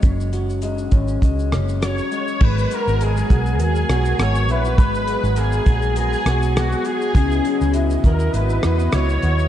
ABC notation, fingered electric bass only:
X:1
M:4/4
L:1/16
Q:"Swing 16ths" 1/4=101
K:G#m
V:1 name="Fingered electric bass" clef=bass
F,,,6 G,,,2 C,,2 F,,,4 z2 | G,,,2 z G,,,3 B,,,2 D,,2 B,,,2 G,,,2 A,,,2 | G,,,3 G,,,3 A,,,4 B,,,4 z2 | C,,2 z C,,3 D,,2 G,,,2 E,,2 C,,2 D,,2 |]